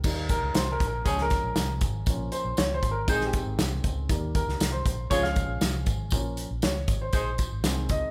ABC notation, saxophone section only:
X:1
M:4/4
L:1/8
Q:1/4=118
K:Ebmix
V:1 name="Saxophone section"
z4 [F,DA] z3 | z4 [A,Ec] z3 | z4 [A,Fd] z3 | z4 [A,Ec] z3 |]